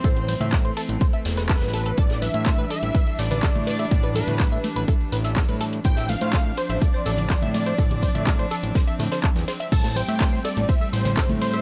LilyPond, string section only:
\new Staff \with { instrumentName = "String section" } { \time 4/4 \key d \dorian \tempo 4 = 124 << { <a c'>1 | <g d'>1~ | <g d'>1 | <c' d'>1~ |
<c' d'>1 | a1 | } \\ { e1~ | e1~ | e1 | f1~ |
f1 | g1 | } >> }